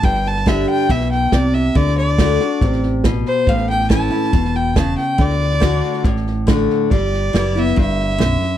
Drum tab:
HH |----p-------p---|----p-------p---|----p-------p---|----p-------p---|
SD |ooooo-o-ooo-o-o-|ooooo-o-ooo-o-o-|ooooo-ooooo-o-o-|ooooo-ooooo-o-o-|
BD |o---o---o---o---|o---o---o---o---|o---o---o---o---|o---o---o---o---|

HH |----p-------p---|
SD |o-o-o-ooooooo-o-|
BD |o-------o-------|